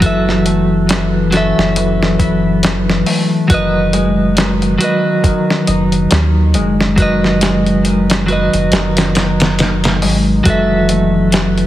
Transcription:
Already playing: analog synth bass F#1, harp A3 C#4 E4
0.00 harp E3, clean electric guitar F#3 F#4, kick, closed hi-hat
0.04 clean electric guitar A4 E5
0.29 snare
0.45 harp A3, closed hi-hat
0.89 harp E3, snare, closed hi-hat
1.31 clean electric guitar F#3 F#4 A4, harp C#4, snare, closed hi-hat
1.37 clean electric guitar E5
1.58 analog synth bass F#1, snare
1.76 harp E3, closed hi-hat
2.03 snare
2.19 harp E4, kick, closed hi-hat
2.63 harp E3, snare, closed hi-hat
2.90 snare
3.06 harp A3, open hi-hat
3.48 analog synth bass F#1, harp D#3, clean electric guitar F#3 F#4, kick, closed hi-hat
3.52 clean electric guitar B4 D#5
3.93 harp G#3, closed hi-hat
4.37 harp D#3, snare, closed hi-hat
4.62 closed hi-hat
4.78 clean electric guitar F#3 F#4, harp B3, closed hi-hat
4.83 clean electric guitar B4 D#5
5.24 harp D#3, kick, closed hi-hat
5.50 snare
5.67 analog synth bass F#1, harp D#4, closed hi-hat
5.92 closed hi-hat
6.11 analog synth bass D#2, harp D#3, snare, closed hi-hat
6.54 analog synth bass F#1, harp G#3, closed hi-hat
6.81 snare
6.96 harp D#3, clean electric guitar F#3 F#4 B4, kick, closed hi-hat
7.02 clean electric guitar D#5
7.24 snare
7.41 harp G#3, snare, closed hi-hat
7.66 closed hi-hat
7.85 harp D#3, closed hi-hat
8.10 snare, closed hi-hat
8.26 clean electric guitar F#3 F#4 B4, harp B3, closed hi-hat
8.32 clean electric guitar D#5
8.54 analog synth bass F#1, closed hi-hat
8.72 analog synth bass F#1, harp D#3, snare, closed hi-hat
8.97 snare, closed hi-hat
9.15 harp D#4, snare, closed hi-hat
9.40 snare, closed hi-hat
9.59 harp D#3, snare, closed hi-hat
9.84 snare, closed hi-hat
10.02 analog synth bass G#1, harp G#3, open hi-hat
10.44 analog synth bass F#1, harp E3, clean electric guitar F#3 F#4, kick, closed hi-hat
10.48 clean electric guitar A4 E5
10.89 harp A3, closed hi-hat
11.32 harp E3, snare, closed hi-hat
11.58 closed hi-hat

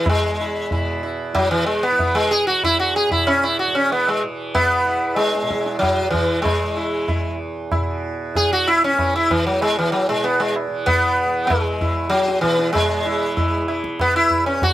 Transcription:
Already playing: tanpura E2 B2 E3
0.06 sitar G#3, tabla na, tabla ge
0.14 tanpura E2
0.40 sitar E4
0.71 tanpura B2, sitar E4, tabla tin, tabla ge
1.03 sitar E4
1.33 tanpura E3, sitar F#3, tabla na, tabla ge
1.51 sitar E3
1.66 sitar G#3
1.83 sitar B3
1.92 tanpura E3
1.99 tabla tin, tabla ge
2.15 sitar G#3
2.31 sitar G#4
2.47 tanpura E2, sitar F#4
2.64 sitar E4, tabla na, tabla ge
2.80 sitar F#4
2.95 sitar G#4, tabla te
3.08 tanpura B2, sitar E4, tabla ge
3.27 sitar C#4, tabla na
3.44 sitar E4
3.59 sitar F#4
3.67 tanpura E3
3.75 sitar C#4
3.92 sitar B3, tabla tin
4.08 sitar G#3
4.24 tanpura E3
4.55 sitar B3, tabla na, tabla ge
4.84 tanpura E2, sitar E4
5.16 sitar G#3, tabla te
5.35 tabla te
5.42 tanpura B2
5.50 sitar E4, tabla ke
5.66 tabla te
5.79 sitar F#3, tabla na, tabla ge
6.02 tanpura E3
6.11 sitar E3, tabla ge
6.42 sitar G#3, tabla na, tabla ge
6.60 tanpura E3
6.77 sitar E4
7.08 sitar E4, tabla tin, tabla ge
7.19 tanpura E2
7.72 sitar E4, tabla na, tabla ge
7.77 tanpura B2
8.34 tanpura E3, sitar G#4, tabla tin, tabla ge
8.53 sitar F#4
8.68 sitar E4
8.84 sitar C#4
8.93 tanpura E3
8.99 tabla na, tabla ge
9.16 sitar E4
9.30 sitar E3, tabla ge
9.47 sitar F#3
9.51 tanpura E2
9.61 sitar G#3, tabla na
9.79 sitar E3
9.92 sitar F#3, tabla na
10.09 tanpura B2, sitar G#3
10.24 sitar B3, tabla tin
10.40 sitar G#3
10.56 tabla na
10.67 tanpura E3
10.86 sitar B3, tabla na, tabla ge
11.26 tanpura E3
11.47 sitar G#3, tabla na, tabla ge
11.81 tanpura E2, sitar E4, tabla ge
12.10 sitar F#3, tabla te
12.28 tabla te
12.41 tanpura B2, sitar E3, tabla ke
12.59 tabla te
12.73 sitar G#3, tabla na, tabla ge
12.99 tanpura E3
13.06 sitar E4
13.37 sitar E4, tabla tin, tabla ge
13.56 tanpura E3
13.68 sitar E4, tabla na
13.84 tabla ke
14.00 sitar B3, tabla na, tabla ge
14.14 tanpura E2, sitar E4
14.31 tabla ge
14.46 sitar C#4
14.62 sitar F#4, tabla tin, tabla ge

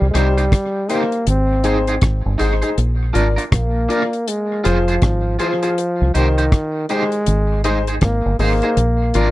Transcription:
Already playing: trombone G3
0.01 fingered electric bass C2
0.11 fingered electric bass C2, trombone G#3, grand piano D#4 G4 C5, clean electric guitar D#4 G4 C5
0.15 trombone G3, cross-stick, closed hi-hat
0.38 clean electric guitar D#4 G4 C5, closed hi-hat
0.52 kick, cross-stick, closed hi-hat
0.88 trombone A#3, grand piano D#4 G4 C5, clean electric guitar D#4 G4 C5, closed hi-hat
1.12 closed hi-hat
1.27 fingered electric bass G#1, trombone C4, closed hi-hat
1.63 grand piano D#4 G#4 C5, clean electric guitar D#4 G#4 C5, closed hi-hat
1.87 clean electric guitar D#4 G#4 C5, closed hi-hat
2.02 fingered electric bass G#1, kick, cross-stick, closed hi-hat
2.26 fingered electric bass G1
2.38 fingered electric bass G#1, clean electric guitar D#4 G#4 C5, grand piano D#4 G#4 C5, closed hi-hat
2.62 grand piano D#4 G#4 C5, clean electric guitar D#4 G#4 C5, closed hi-hat
2.78 fingered electric bass A#1, closed hi-hat
3.13 fingered electric bass G#1, clean electric guitar D4 F4 A#4, grand piano F4 A#4 D5, closed hi-hat
3.36 clean electric guitar D4 F4 A#4, closed hi-hat
3.52 fingered electric bass A#1, trombone A#3, kick, cross-stick, closed hi-hat
3.89 clean electric guitar D4 F4 A#4, grand piano F4 A#4 D5, closed hi-hat
4.13 closed hi-hat
4.28 trombone G#3, closed hi-hat
4.64 fingered electric bass F1, trombone F3, grand piano F4 G#4 C5, clean electric guitar F4 G#4 C5, closed hi-hat
4.88 clean electric guitar F4 G#4 C5, closed hi-hat
5.02 fingered electric bass G#1, kick, cross-stick, closed hi-hat
5.39 trombone F3, clean electric guitar F4 G#4 C5, grand piano F4 G#4 C5, closed hi-hat
5.63 grand piano F4 G#4 C5, clean electric guitar F4 G#4 C5, closed hi-hat
5.78 closed hi-hat
6.01 fingered electric bass C2
6.14 fingered electric bass C2, trombone D#3, grand piano D#4 G4 C5, clean electric guitar D#4 G4 C5, closed hi-hat
6.38 clean electric guitar D#4 G4 C5, closed hi-hat
6.52 kick, cross-stick, closed hi-hat
6.89 trombone G#3, grand piano D#4 G4 C5, clean electric guitar D#4 G4 C5, closed hi-hat
7.12 closed hi-hat
7.26 fingered electric bass G#1, closed hi-hat
7.64 trombone G#3, grand piano D#4 G#4 C5, clean electric guitar D#4 G#4 C5, closed hi-hat
7.87 clean electric guitar D#4 G#4 C5, closed hi-hat
8.01 fingered electric bass G#1, trombone A#3, kick, cross-stick, closed hi-hat
8.26 fingered electric bass G1
8.39 fingered electric bass G#1, trombone A#3, grand piano D#4 G#4 C5, clean electric guitar D#4 G#4 C5, open hi-hat
8.62 grand piano D#4 G#4 C5, clean electric guitar D#4 G#4 C5, closed hi-hat
8.77 fingered electric bass A#1, closed hi-hat
9.14 fingered electric bass G#1, clean electric guitar D4 F4 A#4, grand piano F4 A#4 D5, closed hi-hat

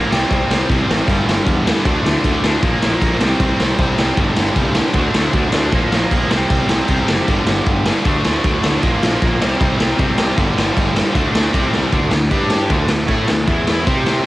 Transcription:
Already playing: distorted electric guitar F3 A#3
0.10 picked electric bass C2, distorted electric guitar C3 G3 C4, snare
0.30 picked electric bass C2, distorted electric guitar C3 G3 C4, kick, crash
0.48 picked electric bass C2, distorted electric guitar C3 G3 C4, snare
0.67 picked electric bass C2, distorted electric guitar C3 G3 C4, kick, crash
0.87 picked electric bass A1, distorted electric guitar C3 G3 C4, snare
1.06 picked electric bass G1, distorted electric guitar G2 D3 G3, kick, crash
1.25 picked electric bass G1, distorted electric guitar G2 D3 G3, snare
1.45 picked electric bass E2, distorted electric guitar G2 D3 G3, kick, crash
1.66 distorted electric guitar G2 D3 G3, snare
1.84 picked electric bass D2, distorted electric guitar D3 A3 D4, kick, crash
2.04 picked electric bass D2, distorted electric guitar D3 A3 D4, snare
2.24 picked electric bass D2, distorted electric guitar D3 A3 D4, kick, crash
2.44 picked electric bass D2, distorted electric guitar D3 A3 D4, snare
2.62 picked electric bass A#1, distorted electric guitar A#2 F3 A#3, kick, crash
2.82 picked electric bass A#1, distorted electric guitar A#2 F3 A#3, snare
3.01 picked electric bass A#1, distorted electric guitar A#2 F3 A#3, kick, crash
3.19 picked electric bass C2, distorted electric guitar C3 G3 C4, snare
3.24 distorted electric guitar C4
3.39 picked electric bass C2, distorted electric guitar C3 G3 C4, kick, crash
3.58 picked electric bass C2, distorted electric guitar C3 G3 C4, snare
3.77 picked electric bass C2, distorted electric guitar C3 G3 C4, kick, crash
3.82 distorted electric guitar C4
3.97 picked electric bass C2, distorted electric guitar C3 G3 C4, snare
4.16 picked electric bass G1, distorted electric guitar G2 D3 G3, kick, crash
4.35 picked electric bass G1, distorted electric guitar G2 D3 G3, snare
4.54 picked electric bass C2, distorted electric guitar G2 D3 G3, kick, crash
4.75 distorted electric guitar G2 D3 G3, snare
4.93 picked electric bass D2, distorted electric guitar D3 A3 D4, kick, crash
5.14 picked electric bass D2, distorted electric guitar D3 A3 D4, snare
5.33 picked electric bass D2, distorted electric guitar D3 A3 D4, kick, crash
5.52 picked electric bass D2, distorted electric guitar D3 A3 D4, snare
5.72 picked electric bass A#1, distorted electric guitar A#2 F3 A#3, kick, crash
5.92 picked electric bass A#1, distorted electric guitar A#2 F3 A#3, snare
6.10 picked electric bass A#1, distorted electric guitar A#2 F3 A#3, kick, crash
6.29 picked electric bass C2, distorted electric guitar C3 G3 C4, snare
6.50 picked electric bass C2, distorted electric guitar C3 G3 C4, kick, crash
6.69 picked electric bass C2, distorted electric guitar C3 G3 C4, snare
6.88 picked electric bass C2, distorted electric guitar C3 G3 C4, kick, crash
7.08 picked electric bass F#1, distorted electric guitar C3 G3 C4, snare
7.27 picked electric bass G1, distorted electric guitar G2 D3 G3, kick, crash
7.47 picked electric bass G1, distorted electric guitar G2 D3 G3, snare
7.66 picked electric bass G1, distorted electric guitar G2 D3 G3, kick, crash
7.86 distorted electric guitar G2 D3 G3, snare
8.05 picked electric bass D2, distorted electric guitar D3 A3 D4, kick, crash
8.25 picked electric bass D2, distorted electric guitar D3 A3 D4, snare
8.44 picked electric bass D2, distorted electric guitar D3 A3 D4, kick, crash
8.62 picked electric bass D2, distorted electric guitar D3 A3 D4, snare
8.82 picked electric bass A#1, distorted electric guitar A#2 F3 A#3, kick, crash
9.01 picked electric bass A#1, distorted electric guitar A#2 F3 A#3, snare
9.21 picked electric bass A#1, distorted electric guitar A#2 F3 A#3, kick, crash
9.41 picked electric bass C2, distorted electric guitar C3 G3 C4, snare
9.60 picked electric bass C2, distorted electric guitar C3 G3 C4, kick, crash
9.79 picked electric bass C2, distorted electric guitar C3 G3 C4, snare
9.98 picked electric bass C2, distorted electric guitar C3 G3 C4, kick, crash
10.17 picked electric bass C2, distorted electric guitar C3 G3 C4, snare
10.37 picked electric bass G1, distorted electric guitar G2 D3 G3, kick, crash
10.55 picked electric bass G1, distorted electric guitar G2 D3 G3, snare
10.75 picked electric bass G1, distorted electric guitar G2 D3 G3, kick, crash
10.94 distorted electric guitar G2 D3 G3, snare
10.98 distorted electric guitar G2
11.14 picked electric bass D2, distorted electric guitar D3 A3 D4, kick, crash
11.32 picked electric bass D2, distorted electric guitar D3 A3 D4, snare
11.52 picked electric bass C2, distorted electric guitar C3 G3 C4, kick, crash
11.73 picked electric bass C2, distorted electric guitar C3 G3 C4, snare
11.93 picked electric bass D2, distorted electric guitar D3 A3 D4, kick, crash
12.11 picked electric bass D2, distorted electric guitar D3 A3, snare
12.31 picked electric bass G2, distorted electric guitar G3 D4 G4, kick, crash
12.50 snare
12.70 picked electric bass D2, distorted electric guitar D3 A3 D4, kick, crash
12.88 picked electric bass D2, distorted electric guitar D3 A3, snare
13.08 picked electric bass A2, distorted electric guitar A3 E4 A4, kick, crash
13.27 picked electric bass D2, distorted electric guitar D3 A3, snare
13.46 picked electric bass E2, distorted electric guitar E3 B3 E4, kick, crash
13.67 snare
13.86 picked electric bass C3, distorted electric guitar C4 G4 C5, kick, crash
14.06 snare

